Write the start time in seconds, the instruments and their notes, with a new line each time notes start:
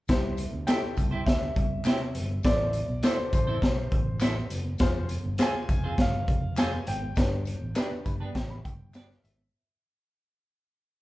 0.08 fingered electric bass C2, upright piano E4 G4 C5, kick, snare, closed hi-hat, tambourine
0.37 closed hi-hat, tambourine
0.53 fingered electric bass D2
0.67 clean electric guitar C4 E4 G4 C5, upright piano D#4 G4 A4, grand piano G5, snare, clap, closed hi-hat, tambourine
0.74 upright piano E4
0.83 muted fingered electric bass stroke
0.97 fingered electric bass C2, kick, closed hi-hat, tambourine
1.11 clean electric guitar C4 E4 G4 C5
1.26 fingered electric bass D2, grand piano E5, kick, snare, closed hi-hat, tambourine
1.56 fingered electric bass C2, kick, closed hi-hat
1.85 fingered electric bass C3, clean electric guitar C4 E4 G4 C5, snare, clap, closed hi-hat, tambourine
2.15 fingered electric bass G1, closed hi-hat, tambourine
2.43 fingered electric bass A1, upright piano E4 A4 C5, grand piano D5, kick, snare, closed hi-hat, tambourine
2.73 closed hi-hat, tambourine
2.89 fingered electric bass B1
3.03 clean electric guitar C4 E4 A4 C5, upright piano E4 A4 D5, grand piano C5, snare, clap, closed hi-hat, tambourine
3.18 muted fingered electric bass stroke
3.33 fingered electric bass A1, grand piano C5, kick, closed hi-hat, tambourine
3.47 clean electric guitar C4 E4 A4 C5
3.62 fingered electric bass B1, kick, snare, closed hi-hat
3.92 fingered electric bass A1, kick, closed hi-hat
4.20 clean electric guitar C4 E4 A4 C5, snare, clap, closed hi-hat, tambourine
4.50 fingered electric bass F#1, closed hi-hat, tambourine
4.78 fingered electric bass F1, upright piano F4 G#4 C5, kick, snare, closed hi-hat, tambourine
5.09 closed hi-hat, tambourine
5.24 fingered electric bass G1
5.38 clean electric guitar C4 F4 G#4 C5, upright piano F4 G#4 C5, snare, clap, closed hi-hat, tambourine
5.42 grand piano G#5
5.54 muted fingered electric bass stroke
5.69 fingered electric bass F1, kick, closed hi-hat, tambourine
5.84 clean electric guitar C4 F4 G#4 C5
5.98 fingered electric bass G1, grand piano F5, kick, snare, closed hi-hat
6.28 fingered electric bass F1, kick, closed hi-hat
6.57 clean electric guitar C4 F4 G#4 C5, grand piano G#5, snare, clap, closed hi-hat, tambourine
6.87 fingered electric bass G#1, grand piano G5, closed hi-hat, tambourine
7.16 fingered electric bass G1, upright piano D4 G4 B4, kick, snare, closed hi-hat, tambourine
7.45 closed hi-hat, tambourine
7.62 fingered electric bass A1
7.75 clean electric guitar B3 D4 G4 B4, upright piano D4 G4 B4, snare, clap, closed hi-hat, tambourine
7.92 muted fingered electric bass stroke
8.05 fingered electric bass G1, upright piano B5, kick, closed hi-hat, tambourine
8.20 clean electric guitar B3 D4 G4 B4, upright piano A5
8.35 fingered electric bass A1, upright piano G5, kick, snare, closed hi-hat, tambourine
8.50 upright piano B5
8.65 fingered electric bass G1, upright piano G5, kick, closed hi-hat, tambourine
8.94 clean electric guitar B3 D4 G4 B4, upright piano F5, snare, clap, closed hi-hat, tambourine
9.11 snare
9.24 fingered electric bass G#1, upright piano E5, closed hi-hat, tambourine